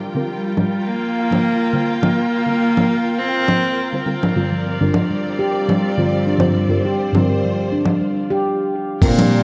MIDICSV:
0, 0, Header, 1, 8, 480
1, 0, Start_track
1, 0, Tempo, 582524
1, 1671, Time_signature, 4, 2, 24, 8
1, 7771, End_track
2, 0, Start_track
2, 0, Title_t, "Synth texture"
2, 0, Program_c, 0, 99
2, 0, Note_on_c, 0, 65, 75
2, 0, Note_on_c, 0, 77, 73
2, 6952, Note_off_c, 0, 65, 0
2, 6953, Note_off_c, 0, 77, 0
2, 7429, Note_on_c, 0, 65, 78
2, 7436, Note_on_c, 0, 77, 80
2, 7771, Note_off_c, 0, 65, 0
2, 7771, Note_off_c, 0, 77, 0
2, 7771, End_track
3, 0, Start_track
3, 0, Title_t, "String section"
3, 0, Program_c, 1, 48
3, 0, Note_on_c, 1, 65, 71
3, 0, Note_on_c, 1, 70, 64
3, 0, Note_on_c, 1, 79, 73
3, 3560, Note_off_c, 1, 65, 0
3, 3560, Note_off_c, 1, 79, 0
3, 3594, Note_on_c, 1, 60, 66
3, 3594, Note_on_c, 1, 74, 84
3, 3595, Note_on_c, 1, 55, 75
3, 5480, Note_off_c, 1, 70, 0
3, 5511, Note_on_c, 1, 72, 72
3, 6919, Note_off_c, 1, 74, 0
3, 6920, Note_off_c, 1, 55, 0
3, 6920, Note_off_c, 1, 60, 0
3, 6937, Note_off_c, 1, 72, 0
3, 7430, Note_on_c, 1, 65, 87
3, 7430, Note_on_c, 1, 79, 91
3, 7433, Note_on_c, 1, 70, 79
3, 7771, Note_off_c, 1, 65, 0
3, 7771, Note_off_c, 1, 70, 0
3, 7771, Note_off_c, 1, 79, 0
3, 7771, End_track
4, 0, Start_track
4, 0, Title_t, "Synth stab"
4, 0, Program_c, 2, 62
4, 0, Note_on_c, 2, 50, 73
4, 0, Note_on_c, 2, 55, 75
4, 0, Note_on_c, 2, 60, 73
4, 0, Note_on_c, 2, 65, 68
4, 0, Note_on_c, 2, 70, 78
4, 90, Note_off_c, 2, 50, 0
4, 92, Note_off_c, 2, 55, 0
4, 93, Note_off_c, 2, 60, 0
4, 95, Note_off_c, 2, 65, 0
4, 98, Note_off_c, 2, 70, 0
4, 119, Note_on_c, 2, 50, 80
4, 126, Note_on_c, 2, 55, 74
4, 130, Note_on_c, 2, 60, 80
4, 131, Note_on_c, 2, 65, 70
4, 137, Note_on_c, 2, 70, 92
4, 206, Note_off_c, 2, 50, 0
4, 209, Note_off_c, 2, 55, 0
4, 211, Note_off_c, 2, 60, 0
4, 212, Note_off_c, 2, 65, 0
4, 215, Note_off_c, 2, 70, 0
4, 1076, Note_on_c, 2, 50, 71
4, 1079, Note_on_c, 2, 55, 66
4, 1085, Note_on_c, 2, 60, 69
4, 1089, Note_on_c, 2, 65, 70
4, 1092, Note_on_c, 2, 72, 80
4, 1401, Note_off_c, 2, 50, 0
4, 1402, Note_off_c, 2, 55, 0
4, 1405, Note_off_c, 2, 60, 0
4, 1407, Note_off_c, 2, 65, 0
4, 1409, Note_off_c, 2, 72, 0
4, 1422, Note_on_c, 2, 50, 86
4, 1426, Note_on_c, 2, 55, 75
4, 1428, Note_on_c, 2, 60, 78
4, 1435, Note_on_c, 2, 65, 77
4, 1437, Note_on_c, 2, 72, 92
4, 1641, Note_off_c, 2, 50, 0
4, 1643, Note_off_c, 2, 55, 0
4, 1645, Note_off_c, 2, 60, 0
4, 1648, Note_off_c, 2, 65, 0
4, 1649, Note_off_c, 2, 72, 0
4, 1661, Note_on_c, 2, 50, 72
4, 1666, Note_on_c, 2, 55, 66
4, 1670, Note_on_c, 2, 60, 65
4, 1674, Note_on_c, 2, 65, 67
4, 1679, Note_on_c, 2, 70, 77
4, 1733, Note_off_c, 2, 50, 0
4, 1735, Note_off_c, 2, 55, 0
4, 1737, Note_off_c, 2, 60, 0
4, 1739, Note_off_c, 2, 65, 0
4, 1742, Note_off_c, 2, 70, 0
4, 2026, Note_on_c, 2, 50, 75
4, 2034, Note_on_c, 2, 55, 65
4, 2043, Note_on_c, 2, 60, 68
4, 2051, Note_on_c, 2, 65, 64
4, 2057, Note_on_c, 2, 70, 78
4, 3209, Note_off_c, 2, 50, 0
4, 3213, Note_off_c, 2, 55, 0
4, 3218, Note_off_c, 2, 60, 0
4, 3221, Note_off_c, 2, 65, 0
4, 3225, Note_off_c, 2, 70, 0
4, 3232, Note_on_c, 2, 50, 70
4, 3236, Note_on_c, 2, 55, 61
4, 3240, Note_on_c, 2, 60, 65
4, 3245, Note_on_c, 2, 65, 67
4, 3250, Note_on_c, 2, 72, 77
4, 3291, Note_off_c, 2, 50, 0
4, 3293, Note_off_c, 2, 55, 0
4, 3295, Note_off_c, 2, 60, 0
4, 3297, Note_off_c, 2, 65, 0
4, 3300, Note_off_c, 2, 72, 0
4, 3342, Note_on_c, 2, 50, 85
4, 3345, Note_on_c, 2, 55, 80
4, 3349, Note_on_c, 2, 60, 79
4, 3352, Note_on_c, 2, 65, 78
4, 3357, Note_on_c, 2, 70, 95
4, 3413, Note_off_c, 2, 50, 0
4, 3415, Note_off_c, 2, 55, 0
4, 3417, Note_off_c, 2, 60, 0
4, 3418, Note_off_c, 2, 65, 0
4, 3421, Note_off_c, 2, 70, 0
4, 3582, Note_on_c, 2, 43, 78
4, 3585, Note_on_c, 2, 50, 73
4, 3590, Note_on_c, 2, 55, 73
4, 3594, Note_on_c, 2, 60, 73
4, 3596, Note_on_c, 2, 65, 75
4, 3599, Note_on_c, 2, 70, 83
4, 3929, Note_off_c, 2, 43, 0
4, 3931, Note_off_c, 2, 50, 0
4, 3933, Note_off_c, 2, 55, 0
4, 3935, Note_off_c, 2, 60, 0
4, 3936, Note_off_c, 2, 65, 0
4, 3938, Note_off_c, 2, 70, 0
4, 3958, Note_on_c, 2, 43, 80
4, 3960, Note_on_c, 2, 50, 76
4, 3964, Note_on_c, 2, 55, 77
4, 3965, Note_on_c, 2, 60, 75
4, 3971, Note_on_c, 2, 65, 77
4, 3973, Note_on_c, 2, 70, 91
4, 4045, Note_off_c, 2, 43, 0
4, 4046, Note_off_c, 2, 50, 0
4, 4048, Note_off_c, 2, 55, 0
4, 4048, Note_off_c, 2, 60, 0
4, 4051, Note_off_c, 2, 65, 0
4, 4053, Note_off_c, 2, 70, 0
4, 4918, Note_on_c, 2, 43, 76
4, 4920, Note_on_c, 2, 50, 68
4, 4924, Note_on_c, 2, 55, 69
4, 4928, Note_on_c, 2, 60, 71
4, 4930, Note_on_c, 2, 65, 69
4, 4933, Note_on_c, 2, 72, 85
4, 5242, Note_off_c, 2, 43, 0
4, 5243, Note_off_c, 2, 50, 0
4, 5245, Note_off_c, 2, 55, 0
4, 5247, Note_off_c, 2, 60, 0
4, 5248, Note_off_c, 2, 65, 0
4, 5250, Note_off_c, 2, 72, 0
4, 5257, Note_on_c, 2, 43, 90
4, 5262, Note_on_c, 2, 50, 77
4, 5264, Note_on_c, 2, 55, 76
4, 5267, Note_on_c, 2, 60, 79
4, 5271, Note_on_c, 2, 65, 85
4, 5273, Note_on_c, 2, 72, 102
4, 5479, Note_off_c, 2, 43, 0
4, 5481, Note_off_c, 2, 50, 0
4, 5482, Note_off_c, 2, 55, 0
4, 5484, Note_off_c, 2, 60, 0
4, 5486, Note_off_c, 2, 65, 0
4, 5487, Note_off_c, 2, 72, 0
4, 5504, Note_on_c, 2, 43, 70
4, 5507, Note_on_c, 2, 50, 68
4, 5510, Note_on_c, 2, 55, 70
4, 5513, Note_on_c, 2, 60, 66
4, 5517, Note_on_c, 2, 65, 66
4, 5521, Note_on_c, 2, 70, 86
4, 5575, Note_off_c, 2, 43, 0
4, 5576, Note_off_c, 2, 50, 0
4, 5577, Note_off_c, 2, 55, 0
4, 5579, Note_off_c, 2, 60, 0
4, 5581, Note_off_c, 2, 65, 0
4, 5583, Note_off_c, 2, 70, 0
4, 5868, Note_on_c, 2, 43, 72
4, 5875, Note_on_c, 2, 50, 66
4, 5883, Note_on_c, 2, 55, 68
4, 5888, Note_on_c, 2, 60, 66
4, 5895, Note_on_c, 2, 65, 66
4, 5902, Note_on_c, 2, 70, 80
4, 6942, Note_off_c, 2, 43, 0
4, 6945, Note_off_c, 2, 50, 0
4, 6950, Note_off_c, 2, 55, 0
4, 6952, Note_off_c, 2, 60, 0
4, 6955, Note_off_c, 2, 65, 0
4, 6959, Note_off_c, 2, 70, 0
4, 7424, Note_on_c, 2, 50, 84
4, 7428, Note_on_c, 2, 55, 72
4, 7434, Note_on_c, 2, 60, 82
4, 7436, Note_on_c, 2, 65, 79
4, 7440, Note_on_c, 2, 70, 93
4, 7770, Note_off_c, 2, 50, 0
4, 7771, Note_off_c, 2, 55, 0
4, 7771, Note_off_c, 2, 60, 0
4, 7771, Note_off_c, 2, 65, 0
4, 7771, Note_off_c, 2, 70, 0
4, 7771, End_track
5, 0, Start_track
5, 0, Title_t, "Cello"
5, 0, Program_c, 3, 42
5, 241, Note_on_c, 3, 55, 72
5, 716, Note_on_c, 3, 58, 90
5, 729, Note_off_c, 3, 55, 0
5, 1669, Note_off_c, 3, 58, 0
5, 1674, Note_on_c, 3, 58, 99
5, 2623, Note_on_c, 3, 60, 98
5, 2635, Note_off_c, 3, 58, 0
5, 3347, Note_off_c, 3, 60, 0
5, 7441, Note_on_c, 3, 46, 103
5, 7771, Note_off_c, 3, 46, 0
5, 7771, End_track
6, 0, Start_track
6, 0, Title_t, "Handpan"
6, 0, Program_c, 4, 114
6, 3725, Note_on_c, 4, 53, 63
6, 3825, Note_off_c, 4, 53, 0
6, 3961, Note_on_c, 4, 62, 68
6, 4063, Note_off_c, 4, 62, 0
6, 4205, Note_on_c, 4, 55, 64
6, 4305, Note_off_c, 4, 55, 0
6, 4440, Note_on_c, 4, 67, 85
6, 4670, Note_off_c, 4, 67, 0
6, 4681, Note_on_c, 4, 55, 87
6, 4910, Note_off_c, 4, 55, 0
6, 4922, Note_on_c, 4, 53, 66
6, 5024, Note_off_c, 4, 53, 0
6, 5167, Note_on_c, 4, 62, 68
6, 5266, Note_off_c, 4, 62, 0
6, 5408, Note_on_c, 4, 55, 70
6, 5507, Note_off_c, 4, 55, 0
6, 5645, Note_on_c, 4, 67, 89
6, 5872, Note_off_c, 4, 67, 0
6, 5886, Note_on_c, 4, 55, 93
6, 6113, Note_off_c, 4, 55, 0
6, 6126, Note_on_c, 4, 53, 68
6, 6226, Note_off_c, 4, 53, 0
6, 6363, Note_on_c, 4, 62, 69
6, 6464, Note_off_c, 4, 62, 0
6, 6604, Note_on_c, 4, 55, 64
6, 6705, Note_off_c, 4, 55, 0
6, 6844, Note_on_c, 4, 67, 98
6, 6950, Note_off_c, 4, 67, 0
6, 7565, Note_on_c, 4, 55, 95
6, 7771, Note_off_c, 4, 55, 0
6, 7771, End_track
7, 0, Start_track
7, 0, Title_t, "FM bass"
7, 0, Program_c, 5, 39
7, 7429, Note_on_c, 5, 31, 88
7, 7517, Note_off_c, 5, 31, 0
7, 7771, End_track
8, 0, Start_track
8, 0, Title_t, "Drums"
8, 470, Note_on_c, 9, 64, 62
8, 553, Note_off_c, 9, 64, 0
8, 1090, Note_on_c, 9, 64, 68
8, 1172, Note_off_c, 9, 64, 0
8, 1671, Note_on_c, 9, 64, 67
8, 1753, Note_off_c, 9, 64, 0
8, 2284, Note_on_c, 9, 64, 66
8, 2366, Note_off_c, 9, 64, 0
8, 2870, Note_on_c, 9, 64, 66
8, 2952, Note_off_c, 9, 64, 0
8, 3485, Note_on_c, 9, 64, 67
8, 3568, Note_off_c, 9, 64, 0
8, 4070, Note_on_c, 9, 64, 70
8, 4152, Note_off_c, 9, 64, 0
8, 4688, Note_on_c, 9, 64, 65
8, 4771, Note_off_c, 9, 64, 0
8, 5273, Note_on_c, 9, 64, 70
8, 5356, Note_off_c, 9, 64, 0
8, 5889, Note_on_c, 9, 64, 68
8, 5971, Note_off_c, 9, 64, 0
8, 6474, Note_on_c, 9, 64, 69
8, 6556, Note_off_c, 9, 64, 0
8, 7429, Note_on_c, 9, 36, 116
8, 7434, Note_on_c, 9, 49, 109
8, 7438, Note_on_c, 9, 69, 57
8, 7512, Note_off_c, 9, 36, 0
8, 7516, Note_off_c, 9, 49, 0
8, 7520, Note_off_c, 9, 69, 0
8, 7569, Note_on_c, 9, 42, 31
8, 7569, Note_on_c, 9, 64, 76
8, 7573, Note_on_c, 9, 69, 34
8, 7651, Note_off_c, 9, 42, 0
8, 7651, Note_off_c, 9, 64, 0
8, 7655, Note_off_c, 9, 69, 0
8, 7771, End_track
0, 0, End_of_file